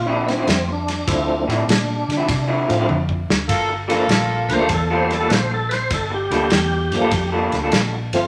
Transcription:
Already playing: A#2
0.06 D3 F3 C4 C#4 E4
0.11 D4
0.27 B3, snare, ride
0.31 C4
0.38 D3 F3 C4 E4
0.47 F2, snare, ride
0.68 muted clean electric guitar stroke
0.72 D4
0.88 snare, ride
1.07 D2 F3 A3 C4 E4, kick, snare, ride
1.28 muted clean electric guitar stroke
1.48 A2 D3 F3 C4 E4, snare, ride
1.68 A#2, muted clean electric guitar stroke, snare, ride
2.08 D3, snare, ride
2.17 D3 F3 C4 E4
2.27 C3, muted clean electric guitar stroke, kick, snare, ride
2.48 D3 F3 C4 E4
2.68 A2 F3 A3 C4 F4, snare, ride
2.78 D3 F3 C4 E4
2.89 F2, high tom
3.09 muted clean electric guitar stroke, kick
3.29 D2, snare
3.48 G1 A#3 F4 A4, kick, snare, ride
3.69 muted clean electric guitar stroke
3.88 F3 G3 A3 A#3 D4 F4 A4, snare, ride
4.08 A#1, muted clean electric guitar stroke, snare, ride
4.49 D2 F3 A3 A#3 D4 B4, snare, ride
4.53 C5
4.60 G3 A#3 F4 A4
4.69 E2, muted clean electric guitar stroke, kick, snare, ride
4.74 A4
4.91 G3 A#3 F4 A4 C5
5.10 A4, snare, ride
5.21 G3 A#3 F4 A4
5.29 A#1 B4, snare, ride
5.33 C5
5.51 A4, muted clean electric guitar stroke
5.69 B4 C5, snare, ride
5.90 G1 A4, kick, snare, ride
6.10 G4, muted clean electric guitar stroke
6.30 D2 G3 A#3 F4 A4, snare, ride
6.50 E2, muted clean electric guitar stroke, snare, ride
6.91 G2 F3 A3 A#3 D4, snare, ride
7.01 G3 A#3 F4 A4
7.11 F2, muted clean electric guitar stroke, kick, snare, ride
7.32 G3 A#3 F4 A4
7.52 D2, snare, ride
7.64 G3 A#3 F4 A4
7.72 A#1, snare, ride
7.92 muted clean electric guitar stroke
8.13 G1 F3 A3 C4 F4, snare, ride

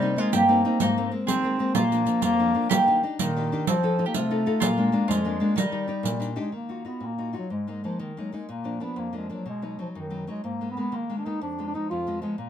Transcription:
Already playing: C3 G3 D#4
0.02 A#3 C4 D#4
0.16 G#3 A#3 C4 D#4 F4
0.32 G2 A#3 G4, riq
0.49 A#3 C4 D#4
0.65 A#3 C4 D#4
0.80 G#2 A#3 D#4, riq
0.97 G#3 A#3 C4
1.11 G#3 A#3 C4
1.27 D#3 C4 G#4, riq
1.43 G#3 A#3 C4
1.59 G#3 A#3 C4
1.75 A#2 A#3 F4, riq
1.92 F3 A#3 D4, riq
2.06 F3 A#3 D4, riq
2.22 F2 A#3 F4, riq
2.40 F3 A#3 D4
2.54 F3 A#3 D4
2.70 D#3 A#3 G4, riq
2.87 D4 D#4 G4
3.03 D4 D#4 G4
3.19 A#2 D#3 A#3, riq
3.37 D4 D#4 G4
3.52 D4 D#4 G4
3.67 F3 C4, riq
3.83 D#4 F4 A4
3.98 D#4 F4 A4
4.06 A#3 G4
4.14 C3 A3 F4, riq
4.31 D#4 F4 A4
4.46 D#4 F4 A4
4.60 A#2 A#3 F4, riq
4.78 G#3 A#3 D4
4.92 G#3 A#3 D4
5.08 F2 G#3 F4, riq
5.25 G#3 A#3 D4
5.40 G#3 A#3 D4
5.56 D#3 G3 D#4, riq
5.72 D#4 G4 D5
5.88 D#4 G4 D5
6.03 A#2, riq
6.20 D4 D#4 G4, riq
6.36 D4 D#4 G4
6.40 G#3
6.52 D#3 A#3
6.69 D#4 F4 F#4
6.85 B3 D#4 F4 F#4
7.00 A#2
7.05 A#3
7.18 D#4 F4 F#4
7.33 D#4 F4 F#4
7.38 F#3
7.50 G#2 G#3
7.67 G#3 A#3 D#4
7.84 F3 G#3 A#3 D#4
7.99 D#3
8.17 F#3 G#3 A#3 D#4
8.32 G#3 A#3 D#4
8.49 A#2 A#3
8.64 F3 A#3 D4
8.80 F3 A#3 B3 D4
8.96 F2 A#3
9.13 F3 A#3 D4
9.17 G#3
9.29 F3 F#3 A#3 D4
9.46 B2 G#3
9.62 F#3 G#3 B3 D#4
9.79 F3 F#3 B3 D#4
9.95 F#2 D#3
10.10 F#3 B3 D#4
10.27 F#3 G#3 B3 D#4
10.44 G#2 A#3
10.61 G#3 A#3 B3
10.71 B3
10.77 G#3 A#3 B3
10.92 D#3 A#3
11.10 G#3 A#3 B3
11.18 D4
11.26 G#3 A#3 B3 D#4
11.41 F2 D4
11.59 F3 G#3 B3
11.67 D4
11.74 F3 G#3 B3 D#4
11.90 F2 F4
12.07 F3 G#3 B3
12.22 F3 G#3 B3
12.37 A#2 A#3

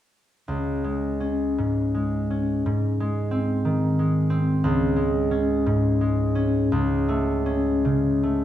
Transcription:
0.48 C#2
0.84 G#3
1.20 C#4
1.58 G#2
1.94 G#3
2.30 C#4
2.66 G#2
3.00 G#3
3.31 C4
3.65 D#3
3.99 G#3
4.30 C4
4.64 C#2
4.96 G#3
5.31 C#4
5.66 G#2
6.01 G#3
6.35 C#4
6.72 C#2
7.08 A3
7.46 C#4
7.85 C#3
8.23 A3

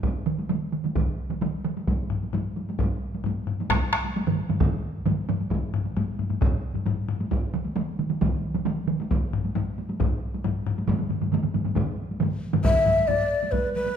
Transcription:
0.03 taiko, taiko high
0.26 taiko mid
0.38 taiko high
0.49 taiko mid, taiko high
0.72 taiko mid
0.84 taiko mid, taiko high
0.96 taiko, taiko mid, taiko high
1.30 taiko mid, taiko high
1.42 taiko mid, taiko high
1.65 taiko mid
1.77 taiko high
1.87 taiko, taiko high
2.10 taiko low-mid
2.23 taiko high
2.33 taiko low-mid, taiko high
2.57 taiko high
2.69 taiko high
2.79 taiko, taiko low-mid, taiko high
3.15 taiko high
3.24 taiko low-mid, taiko high
3.47 taiko low-mid
3.60 taiko high
3.70 taiko rim, taiko, taiko high
3.93 taiko rim
4.05 taiko high
4.16 taiko high
4.27 taiko low-mid, taiko mid
4.39 taiko high
4.50 taiko low-mid, taiko mid, taiko high
4.61 taiko, taiko low-mid, taiko mid, taiko high
5.06 taiko low-mid, taiko mid, taiko high
5.29 taiko low-mid, taiko mid
5.41 taiko high
5.51 taiko, taiko high
5.74 taiko low-mid
5.85 taiko high
5.97 taiko low-mid, taiko high
6.19 taiko low-mid, taiko high
6.30 taiko low-mid, taiko high
6.41 taiko, taiko low-mid, taiko high
6.74 taiko low-mid, taiko high
6.86 taiko low-mid, taiko high
7.09 taiko low-mid
7.20 taiko high
7.31 taiko, taiko high
7.54 taiko mid
7.65 taiko high
7.76 taiko mid, taiko high
7.99 taiko mid, taiko high
8.10 taiko mid, taiko high
8.21 taiko, taiko mid, taiko high
8.55 taiko mid, taiko high
8.66 taiko mid, taiko high
8.88 taiko mid
9.00 taiko high
9.11 taiko, taiko high
9.33 taiko low-mid
9.45 taiko high
9.55 taiko low-mid, taiko high
9.78 taiko high
9.89 taiko high
10.00 taiko, taiko low-mid, taiko high
10.34 taiko high
10.44 taiko low-mid, taiko high
10.67 taiko low-mid
10.78 taiko high
10.88 taiko, taiko low-mid, taiko mid, taiko high
10.99 taiko low-mid, taiko mid
11.10 taiko low-mid, taiko mid
11.22 taiko low-mid, taiko mid, taiko high
11.32 taiko low-mid, taiko mid, taiko high
11.43 taiko low-mid, taiko mid
11.54 taiko low-mid, taiko mid, taiko high
11.65 taiko low-mid, taiko mid, taiko high
11.75 taiko, taiko low-mid, taiko mid, taiko high
12.11 taiko high
12.20 taiko low-mid, taiko mid, taiko high
12.53 taiko low-mid, taiko mid, taiko high
12.64 E5, taiko, taiko low-mid, taiko high
12.86 taiko low-mid, taiko high
12.99 taiko high
13.08 D5, taiko low-mid, taiko high
13.43 taiko high
13.52 B4, taiko, taiko high
13.74 B4, taiko high
13.86 taiko high

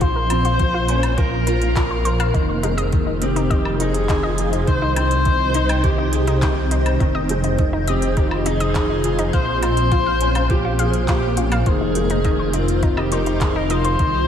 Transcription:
Already playing: F4 C5 D#5 F5
0.01 A#1 F3 A#3 F4 C5, kick, closed hi-hat
0.13 A#4
0.30 C4, closed hi-hat, low woodblock
0.45 F4, closed hi-hat
0.59 F3, kick, closed hi-hat
0.74 F4
0.89 C#4 A#4, closed hi-hat
1.03 closed hi-hat, low woodblock
1.18 F3 F4 A#4, kick, closed hi-hat
1.47 F4 A#4, closed hi-hat
1.62 closed hi-hat
1.76 F3 A#4, kick, clap, closed hi-hat
1.91 C5
2.05 A#4 C5, closed hi-hat
2.20 F5, closed hi-hat, low woodblock
2.34 D#3 D#4 F4, kick, closed hi-hat
2.63 G#3 D#4, closed hi-hat
2.78 D#5, closed hi-hat
2.92 D#3, kick, closed hi-hat
3.07 D#4
3.22 C4 G4, closed hi-hat
3.36 D#4 D#5 F5, closed hi-hat
3.50 D#3 D#5, kick, closed hi-hat
3.65 low woodblock
3.80 D#4 G#4, closed hi-hat
3.94 closed hi-hat
4.09 D#3 D#4, kick, clap, closed hi-hat
4.23 D#5
4.38 F4, closed hi-hat
4.53 D#4, closed hi-hat
4.67 C2 D#3 C4 C5, kick, closed hi-hat
4.82 D#4
4.96 C4 C5 G5, closed hi-hat, low woodblock
5.11 closed hi-hat
5.25 D#3 D#4, kick, closed hi-hat
5.54 D#4, closed hi-hat
5.69 G5, closed hi-hat, low woodblock
5.83 D#3 G4, kick, closed hi-hat
5.98 D#4
6.13 G4 G#4, closed hi-hat
6.27 D#4, closed hi-hat
6.42 D#3 G4 G5, kick, clap, closed hi-hat
6.71 D#4 C5, closed hi-hat
6.86 closed hi-hat, low woodblock
7.00 F1 D#3 D#4 F4, kick, closed hi-hat
7.15 D#5
7.29 G#3, closed hi-hat
7.44 D#4, closed hi-hat
7.58 D#3, kick, closed hi-hat
7.73 D#4
7.88 C4 G4 D#5, closed hi-hat
8.02 G#5, closed hi-hat
8.09 G#4
8.17 D#3 D#4 G4, kick, closed hi-hat
8.28 F4, low woodblock
8.37 G4
8.46 D#4 G#4, closed hi-hat
8.60 D#5, closed hi-hat
8.75 D#3, kick, clap, closed hi-hat
8.90 D#4
9.04 F4, closed hi-hat
9.19 D#4, closed hi-hat
9.33 A#1 F3 A#3 C5 F5, kick, closed hi-hat
9.63 C4 F4 C5, closed hi-hat, low woodblock
9.77 closed hi-hat
9.92 F3 F4, kick, closed hi-hat
10.06 F5
10.11 A#4
10.21 C#4, closed hi-hat
10.35 F4, closed hi-hat, low woodblock
10.50 F3 G4, kick, closed hi-hat
10.65 F4
10.79 F4 G#4 F5, closed hi-hat
10.94 closed hi-hat
11.08 F3 F4 G4, kick, clap, closed hi-hat
11.37 C#4 F4, closed hi-hat
11.52 F5, closed hi-hat, low woodblock
11.66 F1 D#3 F4 G#4 C5, kick, closed hi-hat
11.81 D#4
11.95 G#3, closed hi-hat
12.10 D#4, closed hi-hat
12.24 D#3 D#5, kick, closed hi-hat
12.39 C5
12.48 D#5
12.53 C4 D#4 F4, closed hi-hat
12.68 F5, closed hi-hat
12.83 D#3 D#4, kick, closed hi-hat
12.97 G4 D#5, low woodblock
13.12 D#4 C5, closed hi-hat
13.26 D#4, closed hi-hat
13.41 D#3 G#4, kick, clap, closed hi-hat
13.56 D#4 A#4
13.70 F4 C5 D#5, closed hi-hat
13.85 C5, closed hi-hat
13.99 C2 D#3 C4 D#4, kick, closed hi-hat

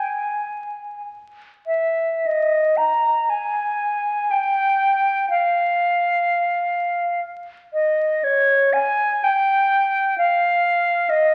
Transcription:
Already playing: G#5
1.67 E5
2.26 D#5
2.77 A#5
3.30 G#5
4.31 G5
5.30 F5
7.73 D#5
8.24 C#5
8.73 G#5
9.24 G5
10.18 F5
11.10 D#5

